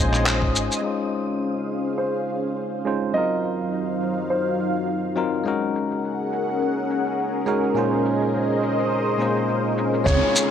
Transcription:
0.00 0.54 A#1 medium
0.00 0.82 G#3 medium
0.00 0.83 C#4 medium
0.00 0.84 D#4 medium
0.00 0.85 F4 medium
0.00 0.82 C5 medium
0.00 0.85 C5 medium
0.00 0.82 D#5 medium
0.00 0.86 D#5 medium
0.00 0.81 G#5 medium
0.00 0.86 D#6 medium
0.13 clap soft
0.13 shaker soft
0.26 clap loud
0.26 shaker soft
0.42 kick medium
0.54 0.68 G#1 medium
0.54 shaker medium
0.72 shaker soft
0.82 2.82 G#3 medium
0.82 2.82 C#4 medium
0.82 3.13 C#4 medium
0.82 2.83 D#4 medium
0.82 2.83 F4 medium
0.82 3.13 G#4 medium
0.82 5.42 C5 medium
0.82 3.13 F5 medium
0.82 shaker soft
0.86 2.84 C5 medium
1.13 shaker medium
1.29 shaker soft
1.43 shaker soft
1.71 shaker medium
1.87 shaker soft
1.98 3.17 C5 medium
1.98 shaker soft
2.29 shaker medium
2.45 shaker soft
2.58 shaker soft
2.85 3.11 G#3 medium
2.85 3.11 C#4 medium
2.85 3.12 D#4 medium
2.85 3.12 F4 medium
2.85 3.12 C5 medium
2.85 shaker medium
3.02 shaker soft
3.13 5.13 F#3 medium
3.13 5.44 F#3 medium
3.13 5.13 C4 medium
3.13 5.14 D#4 medium
3.13 5.44 D#4 medium
3.13 5.15 F4 medium
3.13 4.26 D#5 medium
3.13 5.44 F5 medium
3.18 5.15 A#4 medium
3.44 shaker medium
3.60 shaker soft
3.74 shaker soft
4.02 shaker medium
4.18 shaker soft
4.30 5.13 C5 medium
4.30 shaker soft
4.60 shaker medium
4.76 shaker soft
4.88 shaker soft
5.15 5.42 F#3 medium
5.15 5.42 C4 medium
5.15 5.42 D#4 medium
5.15 5.43 F4 medium
5.15 5.43 A#4 medium
5.15 shaker medium
5.34 shaker soft
5.44 7.43 G#3 medium
5.44 7.44 C#4 medium
5.44 10.04 C#4 medium
5.44 7.44 D#4 medium
5.44 7.45 F#4 medium
5.44 10.03 G#4 medium
5.44 10.03 A#4 medium
5.44 7.74 F#5 medium
5.44 shaker soft
5.48 7.46 A#4 medium
5.75 shaker medium
5.91 shaker soft
6.04 shaker soft
6.33 shaker medium
6.48 shaker soft
6.61 shaker soft
6.90 shaker medium
7.06 shaker soft
7.19 shaker soft
7.46 7.72 G#3 medium
7.46 7.73 C#4 medium
7.46 7.73 D#4 medium
7.46 7.73 F#4 medium
7.46 7.73 A#4 medium
7.46 shaker medium
7.63 shaker soft
7.74 9.17 A#2 medium
7.74 9.17 G#3 medium
7.74 9.18 C#4 medium
7.74 9.18 D#4 medium
7.74 9.18 F4 medium
7.74 10.05 C5 medium
7.74 10.05 D#5 medium
7.74 shaker soft
7.78 9.19 C5 medium
8.05 shaker medium
8.21 shaker soft
8.34 shaker soft
8.63 shaker medium
8.79 shaker soft
8.92 shaker soft
9.18 10.03 A#2 medium
9.18 10.03 G#3 medium
9.18 10.03 C#4 medium
9.18 10.04 D#4 medium
9.18 10.04 F4 medium
9.18 shaker medium
9.22 10.05 C5 medium
9.36 shaker soft
9.49 shaker soft
9.78 shaker medium
9.94 shaker soft
10.04 10.19 C#2 loud
10.04 10.51 G#3 medium
10.04 10.51 C#4 medium
10.04 10.51 D#4 medium
10.04 10.51 F4 medium
10.04 10.51 G#4 medium
10.04 10.51 A#4 medium
10.04 10.51 C#5 loud
10.04 10.51 F5 medium
10.04 10.51 A#5 medium
10.04 10.51 C6 medium
10.04 kick loud
10.04 downlifter medium
10.04 shaker soft
10.08 10.51 G#4 medium
10.36 shaker medium

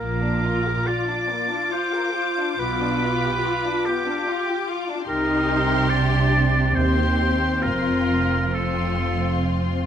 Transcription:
0.00 0.73 A#1 soft
0.00 0.72 A#2 soft
0.00 0.18 A#3 soft
0.00 5.04 F4 soft
0.00 0.89 A#4 soft
0.00 5.05 D6 soft
0.21 0.43 D4 soft
0.43 0.65 F4 soft
0.66 0.87 A#4 soft
0.87 1.08 F4 soft
0.87 1.74 D5 soft
1.08 1.29 D4 soft
1.29 1.51 A#3 soft
1.49 1.71 D4 soft
1.72 1.94 F4 soft
1.72 2.52 C5 soft
1.94 2.15 A#4 soft
2.14 2.36 F4 soft
2.38 2.60 D4 soft
2.52 2.61 C5 soft
2.59 3.32 B1 soft
2.59 3.31 B2 soft
2.59 2.80 B3 soft
2.59 3.87 B4 soft
2.81 3.03 D4 soft
3.03 3.24 F4 soft
3.24 3.45 G4 soft
3.44 3.65 F4 soft
3.66 3.86 D4 soft
3.86 4.07 B3 soft
3.86 4.67 G4 soft
4.07 4.27 D4 soft
4.26 4.47 F4 soft
4.48 4.68 G4 soft
4.69 4.88 F4 soft
4.89 5.09 D4 soft
5.08 6.72 C2 soft
5.08 6.72 C3 soft
5.08 5.87 D#4 soft
5.08 6.72 G4 soft
5.08 5.91 A#4 medium
5.08 6.72 C6 soft
5.90 6.76 D4 soft
5.90 6.77 D5 medium
6.75 7.63 D#2 soft
6.75 7.61 C4 soft
6.75 7.63 G4 soft
6.75 7.64 C5 soft
6.75 7.61 C6 soft
7.63 9.86 F1 soft
7.63 9.86 F2 soft
7.63 8.52 C4 soft
7.63 8.53 F4 soft
7.63 8.56 A#4 soft
7.63 8.53 C6 soft
8.53 9.86 C4 soft
8.53 9.86 F4 soft
8.53 9.47 A4 soft
8.53 9.86 C6 soft

